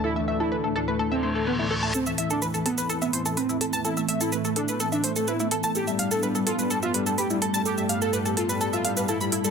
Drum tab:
HH |----------------|--o---o---o-o-o-|--o---o---o---o-|--o---o---o-o-o-|
SH |----------------|xx-xxx-xxx-xxx-x|xx-xxx-xxx-xxx-x|xx-xxx-xxx-xxx-x|

HH |--o---o---o---o-|
SH |xx-xxx-xxx-xxx-x|